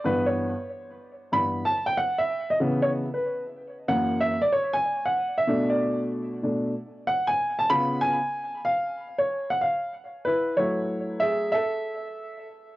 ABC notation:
X:1
M:4/4
L:1/16
Q:"Swing 16ths" 1/4=94
K:F#m
V:1 name="Upright piano"
B c4 z3 b2 a =g f e2 ^d- | ^d c2 B2 z3 f2 e =d c g2 f- | f e2 d2 z6 z f g2 a | b2 g4 ^e3 c2 f e2 z2 |
[EB]2 c4 [Ge]2 [Ae]6 z2 |]
V:2 name="Upright piano" clef=bass
[=G,,E,B,]2 z6 [G,,E,B,]2 z6 | [C,E,B,]2 z6 [F,,E,^A,]2 z6 | z2 [B,,A,D]6 [B,,A,D]2 z6 | [C,B,^E]2 z12 z2 |
z2 [F,A,E]6 z8 |]